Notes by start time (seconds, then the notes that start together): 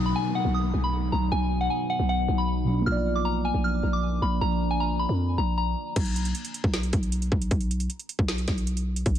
Already playing: B1 B2 F#3 B3 D#4, downlifter
0.06 B5
0.16 G#5
0.35 F#5
0.45 B1
0.54 D#6
0.74 B1
0.84 B5
1.12 B1 A#5
1.32 B1 G#5
1.61 F#5
1.70 G#5
1.90 F#5
1.99 B1
2.09 F#5
2.28 B1
2.38 B5
2.65 B2 F#3
2.70 D4
2.81 A#3
2.86 A#1 F3 A#3 D4 F4 F6
2.92 D5
3.15 D6
3.25 A#5
3.45 G#5
3.54 A#1
3.64 F6
3.83 A#1
3.93 D6
4.22 A#1 B5
4.41 A#1 A#5
4.71 G#5
4.80 A#5
4.99 B5
5.09 F2
5.38 A#1 A#5
5.58 A#5
5.96 B1, kick, closed hi-hat, crash
6.06 closed hi-hat
6.16 closed hi-hat
6.25 closed hi-hat
6.35 closed hi-hat
6.45 closed hi-hat
6.54 closed hi-hat
6.64 B1, kick
6.74 snare, closed hi-hat
6.83 closed hi-hat
6.93 B1, kick, closed hi-hat
7.03 closed hi-hat
7.12 closed hi-hat
7.22 closed hi-hat
7.32 B1, kick
7.42 closed hi-hat
7.51 B1, kick, closed hi-hat
7.61 closed hi-hat
7.71 closed hi-hat
7.80 closed hi-hat
7.90 closed hi-hat
7.99 closed hi-hat
8.09 closed hi-hat
8.19 B1, kick
8.28 snare, closed hi-hat
8.38 closed hi-hat
8.48 B1, kick, snare, closed hi-hat
8.58 closed hi-hat
8.67 closed hi-hat
8.77 closed hi-hat
8.96 closed hi-hat
9.06 A#1, kick, closed hi-hat
9.15 closed hi-hat